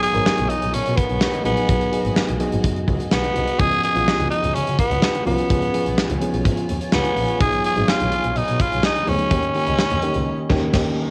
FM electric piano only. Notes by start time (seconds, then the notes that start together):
Already playing: F#3 B3 D#4 G#4
0.13 F#3 B3 D#4 A#4
1.44 F#3 B3 D#4 G#4
1.68 F#3 B3 D#4 G#4
1.92 F#3 B3 D#4 G#4
2.39 F#3 B3 D#4 G#4
3.59 F3 B3 C#4 G#4
3.94 F3 B3 C#4 F4
5.26 F3 B3 C#4 F4
5.50 F3 B3 C#4 G#4
5.73 F3 B3 C#4 G#4
6.21 F3 B3 C#4 G#4
7.40 F#3 B3 D#4 G#4
7.76 F#3 B3 D#4 G#4
9.06 F#3 B3 D#4 G#4
9.31 D#3 A#3 C#4 G4
9.55 D#3 A#3 C#4 G4
10.02 D#3 A#3 C#4 G4
10.49 D#3 A#3 C#4 G4
10.73 D#3 A#3 C#4 G4